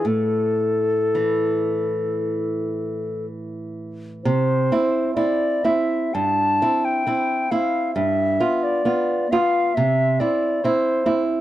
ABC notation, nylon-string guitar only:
X:1
M:4/4
L:1/8
Q:1/4=66
K:C
V:1 name="Nylon-string guitar"
A,,2 E,6 | C, [CE] [CE] [CE] G,, [CE] [CE] [CE] | G,, [B,F] [B,F] [B,F] C, [CE] [CE] [CE] |]